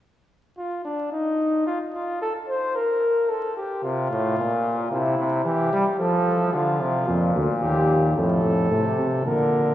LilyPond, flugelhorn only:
\new Staff \with { instrumentName = "Flugelhorn" } { \time 3/4 \key f \mixolydian \tempo 4 = 110 r4 f'8 d'8 ees'4 | f'8 f'8 a'8 c''8 bes'4 | a'8 g'8 f'2 | e'4 g'4 a'4 |
f'4. r8 g'4 | a'2 bes'4 | }